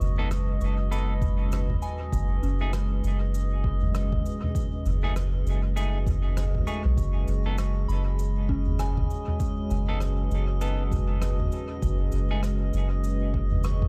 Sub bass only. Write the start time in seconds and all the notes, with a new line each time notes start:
0.00 F#1
0.61 F#1
2.12 F#1
2.43 F#1
3.04 F#1
4.86 F#1
5.46 F#1
6.85 B1
6.97 F#1
7.28 F#1
7.88 F#1
9.70 F#1
10.31 F#1
11.82 F#1
12.13 F#1
12.74 F#1